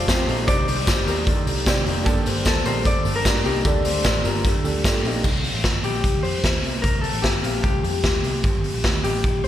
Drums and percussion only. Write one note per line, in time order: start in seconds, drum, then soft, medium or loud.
0.08 kick loud
0.08 snare loud
0.08 tambourine medium
0.28 open hi-hat medium
0.48 kick loud
0.48 closed hi-hat medium
0.48 tambourine medium
0.68 open hi-hat medium
0.68 tambourine medium
0.87 kick loud
0.87 snare loud
0.87 tambourine medium
1.07 open hi-hat medium
1.07 tambourine medium
1.27 kick loud
1.27 closed hi-hat medium
1.47 open hi-hat medium
1.47 tambourine soft
1.66 kick loud
1.66 snare loud
1.66 closed hi-hat medium
1.66 tambourine loud
1.86 open hi-hat medium
2.06 kick loud
2.06 closed hi-hat medium
2.06 tambourine medium
2.26 open hi-hat medium
2.26 tambourine medium
2.45 kick loud
2.45 snare loud
2.45 closed hi-hat medium
2.45 tambourine medium
2.66 open hi-hat medium
2.66 tambourine medium
2.85 kick loud
2.85 closed hi-hat medium
2.85 tambourine soft
3.05 open hi-hat medium
3.05 tambourine soft
3.25 kick loud
3.25 snare loud
3.25 closed hi-hat medium
3.25 tambourine loud
3.45 open hi-hat medium
3.65 kick loud
3.65 closed hi-hat medium
3.65 tambourine medium
3.85 open hi-hat loud
3.85 tambourine medium
4.04 kick medium
4.04 snare loud
4.04 closed hi-hat medium
4.04 tambourine medium
4.25 open hi-hat medium
4.25 tambourine medium
4.45 kick loud
4.45 closed hi-hat medium
4.45 tambourine soft
4.65 open hi-hat medium
4.65 tambourine medium
4.84 kick loud
4.84 snare loud
4.84 closed hi-hat medium
4.84 tambourine loud
5.05 open hi-hat medium
5.24 kick loud
5.24 crash medium
5.44 open hi-hat medium
5.64 kick medium
5.64 snare medium
5.64 closed hi-hat medium
5.84 open hi-hat medium
6.04 kick loud
6.04 closed hi-hat medium
6.24 open hi-hat medium
6.44 kick loud
6.44 snare medium
6.44 closed hi-hat medium
6.64 open hi-hat medium
6.84 kick loud
6.84 closed hi-hat medium
7.04 open hi-hat medium
7.24 kick medium
7.24 snare loud
7.24 closed hi-hat medium
7.44 open hi-hat medium
7.64 kick loud
7.64 closed hi-hat medium
7.84 open hi-hat medium
8.04 kick loud
8.04 snare medium
8.04 closed hi-hat medium
8.24 open hi-hat medium
8.44 kick loud
8.44 closed hi-hat medium
8.64 open hi-hat medium
8.84 kick medium
8.84 snare loud
8.84 closed hi-hat medium
9.04 open hi-hat medium
9.24 kick loud
9.24 closed hi-hat medium
9.44 open hi-hat medium